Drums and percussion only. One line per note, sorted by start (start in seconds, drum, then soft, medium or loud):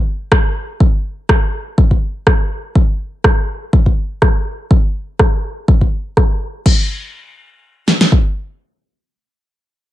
0.32 kick loud
0.32 cross-stick loud
0.80 kick loud
1.29 kick loud
1.29 cross-stick loud
1.78 kick loud
1.91 kick medium
2.27 kick loud
2.27 cross-stick medium
2.75 kick loud
3.24 kick loud
3.24 cross-stick loud
3.73 kick loud
3.86 kick medium
4.22 kick loud
4.22 cross-stick medium
4.71 kick loud
5.19 kick loud
5.19 cross-stick loud
5.68 kick loud
5.81 kick medium
6.17 kick loud
6.17 cross-stick medium
6.66 kick loud
6.66 crash medium
7.88 snare medium
8.01 snare medium
8.12 kick medium